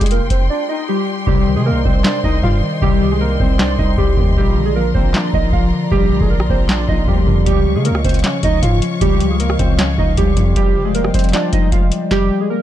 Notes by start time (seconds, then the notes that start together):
Already playing: F4 G4 G5 C6
0.01 F1 G#3 G#4, kick, closed hi-hat
0.06 closed hi-hat
0.11 A#3 A#4, closed hi-hat
0.30 F1 C4 C5, kick, closed hi-hat
0.50 D4 D5
0.69 D#4 D#5
0.88 G3 G4
1.26 C2 C3 G3 D#4 G4 C5, kick
1.47 D#3
1.56 C3 G#3 G#4
1.65 G3 A#3 A#4
1.71 C2
1.85 C2 C4 C5, kick
2.04 D4 C5 D5, snare, clap
2.24 C2 C4 D#4 D#5, kick
2.43 G2 G3 F4 F5, kick
2.62 D#3
2.82 C2 C3 G3 G4, kick
3.01 D#3
3.11 G#3 G#4
3.21 G3 A#3 A#4
3.40 C2 C4 C5, kick
3.59 D4 C5 D5, snare, clap
3.79 C2 C4 D#4 D#5, kick
3.98 C2 G3 G4, kick
4.17 D#2 D#3, kick
4.36 A#1 A#2 G3 F4 G4 D5 A#5, kick
4.56 D3
4.65 G#3 G#4
4.75 F3 A#3 A#4
4.94 A#1 A#3 C4 C5, kick
5.14 C4 D4 D5, snare, clap
5.33 A#1 A#3 D#4 D#5, kick
5.53 A#1 F3 F4 F5, kick
5.72 D3
5.91 A#1 A#2 G3 G4, kick
6.11 D3
6.21 A#1 G#3 G#4, kick
6.30 F3 A#3 A#4
6.40 cross-stick
6.50 A#1 A#3 C4 C5, kick
6.69 C4 D4 D5, snare, clap
6.88 A#1 A#3 D#4 D#5, kick
7.07 D2 F3 G3 G4, kick
7.27 F2 D3, kick
7.46 C#2 C#3 G3 G4 C#5 F5 C#6, kick, closed hi-hat
7.66 F3
7.75 C#3 G#3 G#4
7.85 G#3 A#3 A#4, closed hi-hat
7.90 C#2
7.95 cross-stick
8.04 C#2 C4 C#4 C5, kick, closed hi-hat
8.09 closed hi-hat
8.14 closed hi-hat
8.19 closed hi-hat
8.24 C#4 C#5, snare, clap, closed hi-hat
8.43 C#2 C#4 D#4 D#5, kick, closed hi-hat
8.62 G#2 G#3 F4 F5, kick, closed hi-hat
8.82 F3, closed hi-hat
9.01 C#2 C#3 G3 G4, kick, closed hi-hat
9.20 F3, closed hi-hat
9.30 G#3 G#4
9.40 G#3 A#3 A#4, closed hi-hat
9.50 cross-stick
9.59 C#2 C4 C#4 C5, kick, closed hi-hat
9.79 C#4 C#5, snare, clap, closed hi-hat
9.98 C#2 C#4 D#4 D#5, kick
10.17 C#2 F3 G3 G4, kick, closed hi-hat
10.37 F2 F3, kick, closed hi-hat
10.56 F1 F3 G3 G4 C5 G5, kick, closed hi-hat
10.75 G3
10.85 G#3 G#4
10.95 G#3 A#3 A#4, closed hi-hat
11.04 cross-stick
11.14 F1 C4 C5, kick, closed hi-hat
11.19 closed hi-hat
11.24 closed hi-hat
11.29 closed hi-hat
11.33 D4 F4 D5, snare, clap, closed hi-hat
11.53 F1 C4 D#4 D#5, kick, closed hi-hat
11.72 F1 G#3 F4 F5, kick, closed hi-hat
11.92 G3, closed hi-hat
12.11 G3 G4, kick, snare
12.40 G#3 G#4
12.50 A#3 A#4